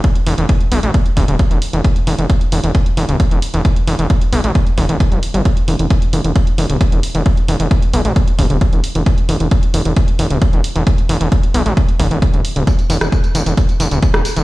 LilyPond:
<<
  \new Staff \with { instrumentName = "Analog synth bass" } { \clef bass \time 4/4 \key e \minor \tempo 4 = 133 r8 e,,16 e,,16 r8 b,,16 a,,16 r8 d,,16 d,,16 r16 e,,16 r16 e,,16 | r8 e,,16 e,,16 r8 e,,16 e,,16 r8 e,,16 d,,16 r16 e,,16 r16 e,,16 | r8 e,,16 e,,16 r8 b,,16 a,,16 r8 e,,16 e,,16 r16 g,,16 r16 g,,16 | r8 e,,16 e,,16 r8 e,,16 e,,16 r8 e,,16 d,,16 r16 e,,16 r16 e,,16 |
r8 e,,16 e,,16 r8 b,,16 a,,16 r8 d,,16 d,,16 r16 e,,16 r16 e,,16 | r8 e,,16 e,,16 r8 e,,16 e,,16 r8 e,,16 d,,16 r16 e,,16 r16 e,,16 | r8 e,,16 e,,16 r8 b,,16 a,,16 r8 e,,16 e,,16 r16 d,,16 r16 d,,16 | r8 e,,16 e,,16 r8 e,,16 e,,16 r8 e,,16 d,,16 r16 e,,16 r16 e,,16 | }
  \new DrumStaff \with { instrumentName = "Drums" } \drummode { \time 4/4 <hh bd>16 hh16 hho16 hh16 <hh bd>16 hh16 hho16 hh16 <hh bd>16 hh16 <hho bd>16 hh16 <hh bd>16 hh16 hho16 hh16 | <hh bd>16 hh16 hho16 hh16 <hh bd>16 hh16 hho16 hh16 <hh bd>16 hh16 hho16 hh16 <hh bd>16 hh16 hho16 hh16 | <hh bd>16 hh16 hho16 hh16 <hh bd>16 hh16 hho16 hh16 <hh bd>16 hh16 <hho bd>16 hh16 <hh bd>16 hh16 hho16 hh16 | <hh bd>16 hh16 hho16 hh16 <hh bd>16 hh16 hho16 hh16 <hh bd>16 hh16 hho16 hh16 <hh bd>16 hh16 hho16 hh16 |
<hh bd>16 hh16 hho16 hh16 <hh bd>16 hh16 hho16 hh16 <hh bd>16 hh16 <hho bd>16 hh16 <hh bd>16 hh16 hho16 hh16 | <hh bd>16 hh16 hho16 hh16 <hh bd>16 hh16 hho16 hh16 <hh bd>16 hh16 hho16 hh16 <hh bd>16 hh16 hho16 hh16 | <hh bd>16 hh16 hho16 hh16 <hh bd>16 hh16 hho16 hh16 <hh bd>16 hh16 <hho bd>16 hh16 <hh bd>16 hh16 hho16 hh16 | <hh bd tamb>16 <hh tamb>16 <hho tamb>16 <hh ss tamb>16 <hh bd tamb>16 <hh tamb>16 <hho tamb>16 <hh tamb>16 <hh bd tamb>16 <hh tamb>16 <hho tamb>16 <hh tamb>16 <hh bd tamb>16 <hh ss tamb>16 <hho tamb>16 <hh tamb>16 | }
>>